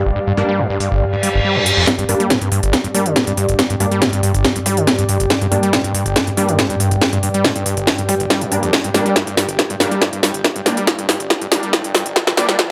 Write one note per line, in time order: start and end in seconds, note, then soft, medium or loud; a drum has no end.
0.00 1.86 G2 medium
0.00 0.35 G3 medium
0.00 0.35 A#3 medium
0.00 0.35 D4 loud
0.00 12.71 G4 medium
0.00 12.71 D5 medium
0.00 3.25 F5 medium
0.06 0.11 G1 loud
0.16 0.20 G2 medium
0.27 0.33 G2 loud
0.37 0.44 G2 medium
0.37 0.58 G3 loud
0.37 0.58 A#3 medium
0.37 0.58 D4 loud
0.37 open hi-hat loud
0.49 0.60 G3 medium
0.59 0.68 G2 loud
0.70 0.79 G2 medium
0.80 0.90 G2 medium
0.80 open hi-hat loud
0.92 1.03 G1 loud
1.02 1.05 A#2 medium
1.02 reverse cymbal medium
1.13 1.16 G2 medium
1.23 1.29 G3 medium
1.23 open hi-hat loud
1.34 1.40 G1 loud
1.45 1.57 G3 medium
1.56 1.68 F2 loud
1.66 1.72 G2 medium
1.66 open hi-hat loud
1.77 1.86 F2 loud
1.87 12.71 G2 medium
1.87 1.91 G2 medium
1.87 kick loud
1.87 snare soft
1.87 closed hi-hat medium
1.99 2.04 G2 loud
1.99 closed hi-hat medium
2.09 2.15 G2 medium
2.09 2.29 G3 loud
2.09 2.29 A#3 loud
2.09 2.29 D4 loud
2.09 open hi-hat loud
2.20 2.32 G3 medium
2.20 closed hi-hat medium
2.30 2.40 G2 medium
2.30 kick loud
2.30 snare soft
2.30 closed hi-hat medium
2.36 12.71 G5 medium
2.41 2.50 G2 medium
2.41 closed hi-hat medium
2.52 2.61 G2 medium
2.52 open hi-hat loud
2.63 2.75 G1 loud
2.63 closed hi-hat medium
2.73 2.77 A#2 medium
2.73 kick loud
2.73 snare medium
2.73 closed hi-hat medium
2.84 2.88 G2 medium
2.84 closed hi-hat medium
2.94 3.78 G3 medium
2.94 3.07 G3 medium
2.94 3.78 A#3 medium
2.94 3.78 D4 medium
2.94 open hi-hat loud
3.06 3.17 D3 medium
3.06 closed hi-hat medium
3.16 3.25 G2 loud
3.16 kick loud
3.16 snare medium
3.16 closed hi-hat medium
3.27 3.33 G2 loud
3.27 closed hi-hat medium
3.37 3.47 G2 medium
3.37 open hi-hat loud
3.49 3.54 G1 loud
3.49 closed hi-hat medium
3.59 3.63 G2 medium
3.59 kick loud
3.59 snare medium
3.59 closed hi-hat medium
3.70 3.76 G2 loud
3.70 closed hi-hat medium
3.80 3.86 G2 medium
3.80 4.01 G3 loud
3.80 4.01 A#3 medium
3.80 4.01 D4 loud
3.80 open hi-hat loud
3.91 4.03 G3 medium
3.91 closed hi-hat medium
4.02 4.11 G2 loud
4.02 kick loud
4.02 snare medium
4.02 closed hi-hat medium
4.13 4.21 G2 medium
4.13 closed hi-hat medium
4.23 4.32 G2 medium
4.23 open hi-hat loud
4.34 4.46 G1 loud
4.34 closed hi-hat medium
4.45 4.48 A#2 medium
4.45 kick loud
4.45 snare medium
4.45 closed hi-hat medium
4.56 4.59 G2 medium
4.56 closed hi-hat medium
4.66 4.79 G3 medium
4.66 kick medium
4.66 open hi-hat loud
4.77 4.89 D3 medium
4.77 closed hi-hat medium
4.87 4.97 G2 loud
4.87 kick loud
4.87 snare medium
4.87 closed hi-hat medium
4.99 5.04 G2 loud
4.99 closed hi-hat medium
5.09 5.18 G2 medium
5.09 open hi-hat loud
5.20 5.26 G1 loud
5.20 closed hi-hat medium
5.30 5.34 G2 medium
5.30 kick loud
5.30 snare medium
5.30 closed hi-hat medium
5.41 5.47 G2 loud
5.41 closed hi-hat medium
5.52 5.58 G2 medium
5.52 5.72 G3 loud
5.52 5.72 A#3 loud
5.52 5.72 D4 loud
5.52 open hi-hat loud
5.63 5.74 G3 medium
5.63 closed hi-hat medium
5.73 5.82 G2 loud
5.73 kick loud
5.73 snare medium
5.73 closed hi-hat medium
5.84 5.93 G2 medium
5.84 closed hi-hat medium
5.94 6.04 G2 medium
5.94 open hi-hat loud
6.06 6.17 G1 loud
6.06 closed hi-hat medium
6.16 6.20 A#2 medium
6.16 kick loud
6.16 snare medium
6.16 closed hi-hat medium
6.27 6.31 G2 medium
6.27 closed hi-hat medium
6.37 7.21 G3 medium
6.37 6.50 G3 medium
6.37 7.21 A#3 medium
6.37 7.21 D4 loud
6.37 open hi-hat loud
6.49 6.60 D3 medium
6.49 closed hi-hat medium
6.59 6.68 G2 loud
6.59 kick loud
6.59 snare medium
6.59 closed hi-hat medium
6.70 6.76 G2 loud
6.70 closed hi-hat medium
6.80 6.90 G2 medium
6.80 open hi-hat loud
6.91 6.97 G1 loud
6.91 closed hi-hat medium
7.02 7.05 G2 medium
7.02 kick loud
7.02 snare medium
7.02 closed hi-hat medium
7.13 7.18 G2 loud
7.13 closed hi-hat medium
7.23 7.29 G2 medium
7.23 open hi-hat loud
7.34 7.46 G3 medium
7.34 closed hi-hat medium
7.44 7.54 G2 medium
7.44 kick loud
7.44 snare medium
7.44 closed hi-hat medium
7.56 7.64 G2 medium
7.56 closed hi-hat medium
7.66 7.75 G2 medium
7.66 open hi-hat loud
7.77 7.89 G1 loud
7.77 closed hi-hat medium
7.87 7.91 A#2 medium
7.87 kick loud
7.87 snare medium
7.87 closed hi-hat medium
7.98 8.02 G2 medium
7.98 closed hi-hat soft
8.09 8.15 G3 medium
8.09 kick medium
8.09 open hi-hat loud
8.20 8.26 G1 loud
8.20 closed hi-hat soft
8.30 8.43 G3 medium
8.30 kick loud
8.30 snare medium
8.30 closed hi-hat medium
8.41 8.53 F2 loud
8.41 closed hi-hat medium
8.52 8.58 G2 medium
8.52 8.73 G3 medium
8.52 8.73 A#3 medium
8.52 8.73 D4 loud
8.52 open hi-hat loud
8.63 8.71 F2 loud
8.63 closed hi-hat medium
8.73 kick loud
8.73 snare medium
8.73 closed hi-hat medium
8.73 riser medium
8.84 8.90 G2 medium
8.84 closed hi-hat medium
8.94 9.01 G2 medium
8.94 9.15 G3 medium
8.94 9.15 A#3 medium
8.94 9.15 D4 loud
8.94 snare medium
8.94 open hi-hat loud
9.06 9.15 G3 medium
9.06 closed hi-hat soft
9.16 9.25 G2 medium
9.16 kick loud
9.16 snare medium
9.16 closed hi-hat medium
9.27 9.36 G2 medium
9.27 closed hi-hat soft
9.37 9.47 G2 medium
9.37 snare medium
9.37 open hi-hat loud
9.49 9.57 G1 medium
9.49 closed hi-hat soft
9.59 9.63 G2 medium
9.59 kick loud
9.59 snare medium
9.59 closed hi-hat medium
9.70 9.76 G2 medium
9.70 closed hi-hat soft
9.80 9.86 G2 medium
9.80 10.01 G3 medium
9.80 10.01 A#3 medium
9.80 10.01 D4 loud
9.80 snare medium
9.80 open hi-hat loud
9.91 10.01 G3 medium
9.91 closed hi-hat soft
10.02 10.11 G2 medium
10.02 kick loud
10.02 snare medium
10.02 closed hi-hat medium
10.13 10.21 G2 medium
10.13 closed hi-hat medium
10.23 10.32 G2 medium
10.23 snare medium
10.23 open hi-hat loud
10.34 10.43 G1 loud
10.34 closed hi-hat medium
10.44 10.48 G2 medium
10.44 kick loud
10.44 snare medium
10.44 closed hi-hat medium
10.56 10.61 G2 loud
10.56 closed hi-hat soft
10.66 10.72 G2 medium
10.66 10.86 G3 loud
10.66 10.86 A#3 medium
10.66 10.86 D4 loud
10.66 snare medium
10.66 open hi-hat loud
10.77 10.87 G3 medium
10.77 closed hi-hat soft
10.87 10.97 G2 medium
10.87 kick loud
10.87 snare medium
10.87 closed hi-hat medium
10.99 11.07 G2 medium
10.99 closed hi-hat soft
11.09 11.18 G2 medium
11.09 snare medium
11.09 open hi-hat loud
11.20 11.29 G1 medium
11.20 closed hi-hat medium
11.30 11.34 G2 medium
11.30 kick loud
11.30 snare medium
11.30 closed hi-hat medium
11.41 11.47 G2 medium
11.41 closed hi-hat soft
11.52 11.58 G2 medium
11.52 11.72 G3 medium
11.52 11.72 A#3 medium
11.52 11.72 D4 loud
11.52 kick medium
11.52 snare medium
11.52 open hi-hat loud
11.63 11.72 G3 medium
11.63 closed hi-hat soft
11.73 11.82 G2 loud
11.73 kick loud
11.73 snare medium
11.73 closed hi-hat medium
11.84 11.93 G2 medium
11.84 closed hi-hat medium
11.95 12.04 G2 medium
11.95 snare medium
11.95 open hi-hat loud
12.06 12.14 G1 loud
12.06 closed hi-hat medium
12.16 12.20 G2 medium
12.16 kick loud
12.16 snare medium
12.16 closed hi-hat medium
12.27 12.33 G2 loud
12.27 snare medium
12.27 closed hi-hat medium
12.37 12.44 G2 medium
12.37 12.57 G3 loud
12.37 12.57 A#3 medium
12.37 12.57 D4 loud
12.37 snare medium
12.37 open hi-hat loud
12.49 12.57 G3 medium
12.49 snare medium
12.49 closed hi-hat medium
12.59 12.62 G2 medium
12.59 kick loud
12.59 snare loud
12.59 closed hi-hat medium